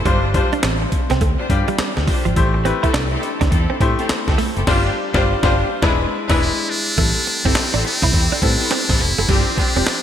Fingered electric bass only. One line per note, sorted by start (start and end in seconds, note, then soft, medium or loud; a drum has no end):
0.05 0.39 G1 loud
0.64 0.84 A1 medium
1.11 1.18 C2 medium
1.21 1.34 D2 medium
1.50 1.63 G2 medium
1.79 muted fingered electric bass stroke soft
1.97 2.05 D2 loud
2.26 2.34 G#1 medium
2.37 2.70 A1 loud
2.94 3.15 C2 medium
3.41 3.49 D2 medium
3.52 3.65 E2 medium
3.80 3.94 A2 loud
4.10 muted fingered electric bass stroke soft
4.28 4.36 D2 medium
4.57 4.64 F#1 medium
4.67 4.88 G1 loud
5.14 5.33 G1 loud
5.43 5.62 G1 loud
5.83 6.04 E1 loud
6.30 6.48 E1 loud
6.98 7.11 A1 loud
7.45 7.53 G1 medium
7.56 muted fingered electric bass stroke soft
7.74 7.82 A1 medium
8.03 8.10 C2 medium
8.13 8.26 E2 medium
8.42 8.55 A2 medium
8.90 8.97 A1 loud
9.00 9.13 F1 loud
9.18 9.26 F#1 medium
9.29 9.42 G1 loud
9.76 9.84 E1 medium